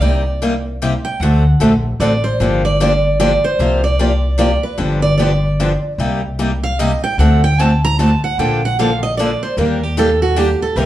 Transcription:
0.00 upright bass C2, steel-string acoustic guitar C3 G3 A#3 D#4 G4 D5
0.42 steel-string acoustic guitar C3 G3 A#3 D#4 G4
0.82 steel-string acoustic guitar C3 G3 A#3 D#4 G4
1.05 steel-string acoustic guitar G5
1.20 upright bass D2, steel-string acoustic guitar D3 A3 C4 F#4 A4 F#5
1.60 upright bass A#1, steel-string acoustic guitar D3 A3 C4 F#4 A4
2.00 upright bass A1, steel-string acoustic guitar D3 A3 C4 F#4 A4 D5
2.24 steel-string acoustic guitar C5
2.40 upright bass G1, steel-string acoustic guitar D3 F3 A#3 D4 G4
2.65 steel-string acoustic guitar D5
2.80 steel-string acoustic guitar D3 F3 A#3 D4 G4 D5
3.20 steel-string acoustic guitar D3 F3 A#3 D4 G4 D5
3.44 steel-string acoustic guitar C5
3.59 upright bass C2, steel-string acoustic guitar C3 F3 A#3 F4 G4
3.84 steel-string acoustic guitar D5
3.99 steel-string acoustic guitar C3 F3 A#3 F4 G4 D5
4.38 steel-string acoustic guitar C3 F3 A#3 F4 G4 D5
4.63 steel-string acoustic guitar B4
4.78 upright bass G1, steel-string acoustic guitar D3 F3 B3 D4 G4
5.02 steel-string acoustic guitar D5
5.18 steel-string acoustic guitar D3 F3 B3 D4 G4 D5
5.60 steel-string acoustic guitar D3 F3 B3 D4 G4
5.98 upright bass C2, steel-string acoustic guitar C3 G3 A#3 D#4 G4
6.39 steel-string acoustic guitar C3 G3 A#3 D#4 G4
6.63 steel-string acoustic guitar F5
6.79 steel-string acoustic guitar C3 G3 A#3 D#4 G4 D#5
7.04 steel-string acoustic guitar G5
7.18 upright bass D2, steel-string acoustic guitar D3 A3 C4 F#4 A4 F#5
7.44 steel-string acoustic guitar G5
7.59 steel-string acoustic guitar D3 A3 C4 F#4 A4 A5
7.85 steel-string acoustic guitar A#5
7.99 steel-string acoustic guitar D3 A3 C4 F#4 A4 A5
8.24 steel-string acoustic guitar F#5
8.38 upright bass A#1, steel-string acoustic guitar D3 F3 A#3 D4 A4 G5
8.65 steel-string acoustic guitar F#5
8.79 steel-string acoustic guitar D3 F3 A#3 D4 A4 F5
9.03 steel-string acoustic guitar D#5
9.17 steel-string acoustic guitar D3 F3 A#3 D4 A4 D5
9.43 steel-string acoustic guitar C5
9.57 upright bass D#2, steel-string acoustic guitar D#3 G3 A#3 D4 G4 A#4
9.83 steel-string acoustic guitar G4
9.97 steel-string acoustic guitar D#3 G3 A#3 D4 G4 A4
10.22 steel-string acoustic guitar F#4
10.36 steel-string acoustic guitar D#3 G3 A#3 D4 G4
10.62 steel-string acoustic guitar A4
10.76 upright bass C2, steel-string acoustic guitar C3 G3 A#3 D#4 G4 A#4

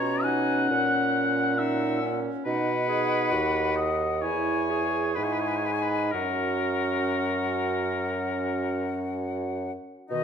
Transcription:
Already playing: bassoon B2, french horn C#4, clarinet F4, oboe C#5, flute A#5
0.23 clarinet D#4, oboe F#5, flute G#5
0.70 bassoon A#2, clarinet C#4, flute F#5
1.57 french horn C#4, clarinet D#4, oboe E5, flute F#5
2.02 clarinet C#4
2.45 bassoon B2, clarinet D#4, french horn D#4, oboe B4, flute F#5
2.88 clarinet G#4
3.32 bassoon D#2, clarinet F#4
3.76 oboe D#5
4.22 bassoon E2, clarinet E4, french horn E4, oboe C#5, flute G#5
4.70 clarinet G#4
5.15 bassoon G#2, french horn E4, oboe B4, flute G#5
5.24 oboe C#5
5.32 oboe B4
5.40 oboe C#5
5.47 oboe B4
5.57 oboe C#5
5.65 french horn D#4, oboe B4
5.72 oboe C#5
5.81 oboe B4
6.12 bassoon F#2, french horn C#4, clarinet F#4, oboe A#4, flute F#5
10.10 bassoon B2, clarinet D#3, oboe D#4, french horn F#4, flute D#5

